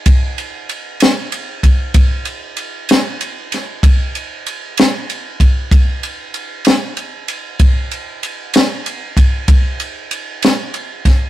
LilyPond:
\new DrumStaff \with { instrumentName = "Drums" } \drummode { \time 12/8 \tempo 4. = 64 <bd cymr>8 cymr8 cymr8 <cymr sn>8 cymr8 <bd cymr>8 <bd cymr>8 cymr8 cymr8 <cymr sn>8 cymr8 <cymr sn>8 | <bd cymr>8 cymr8 cymr8 <cymr sn>8 cymr8 <bd cymr>8 <bd cymr>8 cymr8 cymr8 <cymr sn>8 cymr8 cymr8 | <bd cymr>8 cymr8 cymr8 <cymr sn>8 cymr8 <bd cymr>8 <bd cymr>8 cymr8 cymr8 <cymr sn>8 cymr8 <bd cymr sn>8 | }